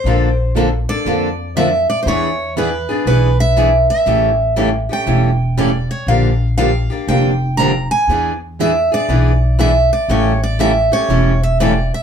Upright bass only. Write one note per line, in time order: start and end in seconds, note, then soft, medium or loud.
0.04 0.85 A#1 medium
1.05 1.85 F2 medium
2.05 2.86 E2 medium
3.06 3.86 B1 medium
4.06 4.86 A1 medium
5.06 5.87 E1 medium
6.07 6.87 A#1 medium
7.07 7.88 F1 medium
8.08 8.88 E2 medium
9.09 9.89 B1 medium
10.08 10.89 A1 medium
11.09 11.89 E1 medium